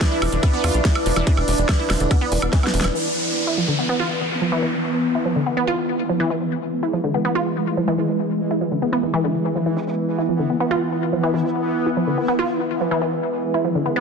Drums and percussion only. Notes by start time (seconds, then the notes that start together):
0.01 kick, snare, closed hi-hat, ride
0.22 open hi-hat, high woodblock
0.32 closed hi-hat
0.43 kick, closed hi-hat, ride, high woodblock
0.64 open hi-hat, high woodblock
0.74 closed hi-hat
0.85 kick, snare, closed hi-hat, ride
0.95 high woodblock
1.06 open hi-hat
1.16 closed hi-hat, high woodblock
1.27 kick, closed hi-hat, ride
1.37 high woodblock
1.48 open hi-hat
1.58 closed hi-hat
1.69 kick, snare, closed hi-hat, ride, high woodblock
1.90 snare, open hi-hat, high woodblock
2.00 closed hi-hat
2.11 kick, closed hi-hat, ride, high woodblock
2.32 open hi-hat
2.42 high woodblock
2.53 kick, snare, closed hi-hat, ride
2.63 snare, high woodblock
2.74 open hi-hat
2.81 snare, closed hi-hat, high woodblock